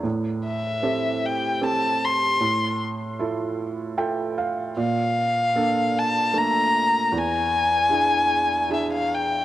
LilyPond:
<<
  \new Staff \with { instrumentName = "Violin" } { \time 3/4 \key a \minor \tempo 4 = 76 r8 e''4 g''8 a''8 c'''8~ | c'''8 r2 r8 | f''4. a''8 bes''4 | gis''2 e''16 f''16 g''8 | }
  \new Staff \with { instrumentName = "Felt piano" } { \time 3/4 \key a \minor << { r2. | r2 g''8 f''8 | r2. | r2. | } \\ { a,4 <c' g' a'>4 <c' g' a'>4 | a,4 <e' f' a'>4 <f' a' e''>4 | bes,4 <bes d' a'>4 <a bes d'>4 | e,4 <d' e' gis'>4 <d' e' gis'>4 | } >> }
>>